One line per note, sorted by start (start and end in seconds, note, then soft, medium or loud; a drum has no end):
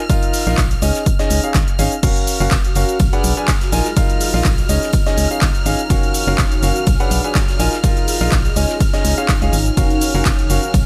0.00 2.02 F6 medium
0.10 0.44 D#4 medium
0.10 0.44 F4 medium
0.10 0.44 A#4 medium
0.10 0.44 F5 medium
0.10 kick loud
0.10 closed hi-hat medium
0.10 tambourine medium
0.10 shaker soft
0.23 closed hi-hat medium
0.23 shaker soft
0.33 open hi-hat medium
0.33 open hi-hat loud
0.33 shaker medium
0.47 0.55 A#1 loud
0.47 0.58 D#4 medium
0.47 0.58 F4 medium
0.47 0.58 A#4 medium
0.47 0.58 F5 loud
0.47 snare soft
0.47 shaker soft
0.58 0.76 A#1 medium
0.58 kick loud
0.58 snare loud
0.58 clap loud
0.58 closed hi-hat medium
0.58 tambourine medium
0.58 shaker soft
0.71 closed hi-hat medium
0.71 shaker soft
0.82 0.92 C#2 loud
0.82 1.02 C#4 medium
0.82 1.02 D#4 medium
0.82 1.02 G#4 medium
0.82 1.02 D#5 medium
0.82 open hi-hat loud
0.82 tambourine medium
0.82 shaker medium
0.95 snare soft
0.95 closed hi-hat soft
0.95 shaker soft
1.06 kick loud
1.06 closed hi-hat medium
1.06 tambourine loud
1.06 shaker soft
1.19 1.39 C#4 medium
1.19 1.39 D#4 medium
1.19 1.39 G#4 medium
1.19 1.39 D#5 medium
1.19 snare medium
1.19 closed hi-hat medium
1.19 shaker soft
1.30 1.40 C#2 medium
1.30 snare soft
1.30 open hi-hat loud
1.30 tambourine medium
1.30 shaker medium
1.43 1.55 C#4 medium
1.43 1.55 D#4 medium
1.43 1.55 G#4 medium
1.43 1.55 F5 medium
1.43 closed hi-hat soft
1.43 shaker soft
1.54 1.64 G#1 medium
1.54 kick loud
1.54 snare loud
1.54 clap loud
1.54 closed hi-hat medium
1.54 tambourine medium
1.54 shaker soft
1.68 closed hi-hat medium
1.68 shaker soft
1.79 1.88 G#1 medium
1.79 1.92 C#4 medium
1.79 1.92 D#4 medium
1.79 1.92 G#4 medium
1.79 1.92 F5 medium
1.79 open hi-hat loud
1.79 tambourine medium
1.79 shaker medium
1.92 closed hi-hat soft
1.92 shaker soft
2.03 2.12 F#1 loud
2.03 2.37 C#4 medium
2.03 2.37 F#4 medium
2.03 3.29 F#4 medium
2.03 2.37 A#4 medium
2.03 2.37 F5 medium
2.03 10.86 F6 medium
2.03 kick loud
2.03 closed hi-hat medium
2.03 crash medium
2.03 ride medium
2.03 tambourine medium
2.03 shaker soft
2.16 closed hi-hat medium
2.16 shaker soft
2.27 open hi-hat loud
2.27 tambourine medium
2.27 shaker medium
2.38 2.48 F#1 loud
2.38 2.52 C#4 medium
2.38 2.52 F#4 medium
2.38 2.52 A#4 medium
2.38 3.29 F5 medium
2.38 2.52 F5 loud
2.38 shaker soft
2.51 2.69 F#1 medium
2.51 kick loud
2.51 snare loud
2.51 clap loud
2.51 closed hi-hat medium
2.51 ride medium
2.51 tambourine medium
2.51 shaker soft
2.65 closed hi-hat medium
2.65 shaker soft
2.75 2.85 F#1 loud
2.75 2.96 C#4 medium
2.75 2.96 F#4 medium
2.75 2.96 A#4 medium
2.75 2.96 F5 medium
2.75 open hi-hat loud
2.75 tambourine medium
2.75 shaker medium
2.89 closed hi-hat soft
2.89 shaker soft
3.00 3.09 B1 loud
3.00 4.12 G#4 medium
3.00 kick loud
3.00 closed hi-hat medium
3.00 ride medium
3.00 tambourine medium
3.00 shaker soft
3.13 3.32 D4 medium
3.13 3.32 G#4 medium
3.13 3.32 B4 medium
3.13 3.32 F#5 loud
3.13 closed hi-hat medium
3.13 shaker soft
3.24 3.33 B1 medium
3.24 open hi-hat loud
3.24 tambourine medium
3.24 shaker medium
3.37 3.49 D4 medium
3.37 3.49 G#4 medium
3.37 3.49 B4 medium
3.37 3.49 G#5 medium
3.37 closed hi-hat soft
3.37 shaker soft
3.48 kick loud
3.48 snare loud
3.48 clap loud
3.48 closed hi-hat medium
3.48 ride medium
3.48 tambourine medium
3.48 shaker soft
3.61 snare medium
3.61 closed hi-hat medium
3.61 shaker soft
3.72 3.82 A#1 medium
3.72 3.86 D#4 medium
3.72 5.18 F4 medium
3.72 3.86 F4 medium
3.72 3.86 A#4 medium
3.72 3.86 G#5 loud
3.72 open hi-hat loud
3.72 tambourine medium
3.72 shaker medium
3.85 snare soft
3.85 closed hi-hat soft
3.85 shaker soft
3.97 4.31 D#4 medium
3.97 4.31 F4 medium
3.97 4.31 A#4 medium
3.97 5.18 D#5 medium
3.97 4.31 F5 medium
3.97 kick loud
3.97 closed hi-hat medium
3.97 ride medium
3.97 tambourine loud
3.97 shaker soft
4.10 closed hi-hat medium
4.10 shaker soft
4.16 5.18 A#5 medium
4.16 open hi-hat medium
4.21 open hi-hat loud
4.21 shaker medium
4.34 4.42 A#1 loud
4.34 4.45 D#4 medium
4.34 4.45 F4 medium
4.34 4.45 A#4 medium
4.34 4.45 F5 loud
4.34 snare soft
4.34 shaker soft
4.44 4.63 A#1 medium
4.44 kick loud
4.44 snare loud
4.44 clap loud
4.44 closed hi-hat medium
4.44 ride medium
4.44 tambourine medium
4.44 shaker soft
4.58 closed hi-hat medium
4.58 shaker soft
4.69 4.79 C#2 loud
4.69 4.89 C#4 medium
4.69 6.30 D#4 medium
4.69 4.89 D#4 medium
4.69 4.89 G#4 medium
4.69 4.89 D#5 medium
4.69 open hi-hat loud
4.69 tambourine medium
4.69 shaker medium
4.79 6.30 C#5 medium
4.79 snare soft
4.79 closed hi-hat soft
4.79 shaker soft
4.93 kick loud
4.93 closed hi-hat medium
4.93 ride medium
4.93 tambourine medium
4.93 shaker soft
5.06 5.26 C#4 medium
5.06 5.26 D#4 medium
5.06 5.26 G#4 medium
5.06 5.26 D#5 loud
5.06 snare medium
5.06 closed hi-hat medium
5.06 shaker soft
5.18 5.27 C#2 medium
5.18 snare soft
5.18 open hi-hat loud
5.18 tambourine medium
5.18 shaker medium
5.24 6.30 G#5 medium
5.31 5.42 C#4 medium
5.31 5.42 D#4 medium
5.31 5.42 G#4 medium
5.31 5.42 F5 medium
5.31 closed hi-hat soft
5.31 shaker soft
5.41 5.51 G#1 medium
5.41 kick loud
5.41 snare loud
5.41 clap loud
5.41 closed hi-hat medium
5.41 ride medium
5.41 tambourine medium
5.41 shaker soft
5.55 closed hi-hat medium
5.55 shaker soft
5.66 5.75 G#1 medium
5.66 5.79 C#4 medium
5.66 5.79 D#4 medium
5.66 5.79 G#4 medium
5.66 5.79 F5 medium
5.66 open hi-hat loud
5.66 tambourine medium
5.66 shaker medium
5.79 closed hi-hat soft
5.79 shaker soft
5.90 6.00 F#1 loud
5.90 6.24 C#4 medium
5.90 6.24 F#4 medium
5.90 7.16 F#4 medium
5.90 6.24 A#4 medium
5.90 6.24 F5 medium
5.90 kick loud
5.90 closed hi-hat medium
5.90 ride medium
5.90 tambourine medium
5.90 shaker soft
6.03 closed hi-hat medium
6.03 shaker soft
6.12 7.16 F5 medium
6.12 open hi-hat loud
6.12 tambourine medium
6.12 shaker medium
6.27 6.35 F#1 loud
6.27 6.39 C#4 medium
6.27 6.39 F#4 medium
6.27 6.39 A#4 medium
6.27 6.39 F5 loud
6.27 shaker soft
6.38 6.56 F#1 medium
6.38 kick loud
6.38 snare loud
6.38 clap loud
6.38 closed hi-hat medium
6.38 ride medium
6.38 tambourine medium
6.38 shaker soft
6.52 closed hi-hat medium
6.52 shaker soft
6.63 6.72 F#1 loud
6.63 6.83 C#4 medium
6.63 6.83 F#4 medium
6.63 6.83 A#4 medium
6.63 6.83 F5 medium
6.63 open hi-hat loud
6.63 tambourine medium
6.63 shaker medium
6.76 closed hi-hat soft
6.76 shaker soft
6.87 6.96 B1 loud
6.87 7.99 G#4 medium
6.87 kick loud
6.87 closed hi-hat medium
6.87 ride medium
6.87 tambourine medium
6.87 shaker soft
7.00 7.20 D4 medium
7.00 7.20 G#4 medium
7.00 7.20 B4 medium
7.00 7.20 F#5 loud
7.00 closed hi-hat medium
7.00 shaker soft
7.11 7.21 B1 medium
7.11 open hi-hat loud
7.11 tambourine medium
7.11 shaker medium
7.24 7.36 D4 medium
7.24 7.36 G#4 medium
7.24 7.36 B4 medium
7.24 7.36 G#5 medium
7.24 closed hi-hat soft
7.24 shaker soft
7.35 kick loud
7.35 snare loud
7.35 clap loud
7.35 closed hi-hat medium
7.35 ride medium
7.35 tambourine loud
7.35 shaker soft
7.48 snare medium
7.48 closed hi-hat medium
7.48 shaker soft
7.59 7.69 A#1 medium
7.59 7.73 D#4 medium
7.59 9.05 F4 medium
7.59 7.73 F4 medium
7.59 7.73 A#4 medium
7.59 7.73 G#5 loud
7.59 open hi-hat loud
7.59 tambourine medium
7.59 shaker medium
7.71 9.05 D#5 medium
7.71 snare medium
7.71 closed hi-hat soft
7.71 shaker soft
7.84 8.18 D#4 medium
7.84 8.18 F4 medium
7.84 8.18 A#4 medium
7.84 8.18 F5 medium
7.84 kick loud
7.84 closed hi-hat medium
7.84 ride medium
7.84 tambourine medium
7.84 shaker soft
7.97 closed hi-hat medium
7.97 shaker soft
8.03 9.05 A#5 medium
8.08 open hi-hat loud
8.08 open hi-hat medium
8.08 shaker medium
8.21 8.29 A#1 loud
8.21 8.32 D#4 medium
8.21 8.32 F4 medium
8.21 8.32 A#4 medium
8.21 8.32 F5 loud
8.21 snare soft
8.21 shaker soft
8.32 8.50 A#1 medium
8.32 kick loud
8.32 snare loud
8.32 clap loud
8.32 closed hi-hat medium
8.32 ride medium
8.32 tambourine medium
8.32 shaker soft
8.45 closed hi-hat soft
8.45 shaker soft
8.56 8.66 C#2 loud
8.56 8.77 C#4 medium
8.56 10.17 D#4 medium
8.56 8.77 D#4 medium
8.56 8.77 G#4 medium
8.56 8.77 D#5 medium
8.56 open hi-hat loud
8.56 tambourine medium
8.56 shaker medium
8.69 snare soft
8.69 closed hi-hat soft
8.69 shaker soft
8.80 kick loud
8.80 closed hi-hat medium
8.80 ride medium
8.80 tambourine medium
8.80 shaker soft
8.93 9.13 C#4 medium
8.93 9.13 D#4 medium
8.93 9.13 G#4 medium
8.93 10.17 C#5 medium
8.93 9.13 D#5 medium
8.93 10.17 G#5 medium
8.93 snare medium
8.93 closed hi-hat medium
8.93 shaker soft
9.05 9.14 C#2 medium
9.05 snare soft
9.05 open hi-hat loud
9.05 tambourine medium
9.05 shaker medium
9.18 9.29 C#4 medium
9.18 9.29 D#4 medium
9.18 9.29 G#4 medium
9.18 9.29 F5 loud
9.18 closed hi-hat soft
9.18 shaker soft
9.28 kick loud
9.28 snare loud
9.28 clap loud
9.28 closed hi-hat medium
9.28 ride medium
9.28 tambourine medium
9.28 shaker soft
9.42 9.50 C#2 medium
9.42 9.53 C#4 medium
9.42 9.53 D#4 medium
9.42 9.53 G#4 medium
9.42 9.53 F5 loud
9.42 closed hi-hat medium
9.42 shaker soft
9.53 9.71 G#1 medium
9.53 open hi-hat loud
9.53 tambourine medium
9.53 shaker medium
9.66 closed hi-hat soft
9.66 shaker soft
9.77 9.87 F#1 loud
9.77 10.11 C#4 medium
9.77 10.86 F#4 medium
9.77 10.11 F#4 medium
9.77 10.11 A#4 medium
9.77 10.11 F5 medium
9.77 kick loud
9.77 closed hi-hat medium
9.77 ride medium
9.77 tambourine medium
9.77 shaker soft
9.90 closed hi-hat medium
9.90 shaker soft
10.01 open hi-hat loud
10.01 tambourine medium
10.01 shaker medium
10.14 10.23 F#1 loud
10.14 10.26 C#4 medium
10.14 10.26 F#4 medium
10.14 10.26 A#4 medium
10.14 10.86 F5 medium
10.14 10.26 F5 loud
10.14 shaker soft
10.25 10.44 F#1 medium
10.25 kick loud
10.25 snare loud
10.25 clap loud
10.25 closed hi-hat medium
10.25 ride medium
10.25 tambourine medium
10.25 shaker soft
10.39 closed hi-hat medium
10.39 shaker soft
10.50 10.59 F#1 loud
10.50 10.70 C#4 medium
10.50 10.70 F#4 medium
10.50 10.70 A#4 medium
10.50 10.70 F5 medium
10.50 open hi-hat loud
10.50 tambourine medium
10.50 shaker medium
10.63 closed hi-hat soft
10.63 shaker soft
10.74 10.83 B1 loud
10.74 10.86 G#4 medium
10.74 kick loud
10.74 closed hi-hat medium
10.74 ride medium
10.74 tambourine medium
10.74 shaker soft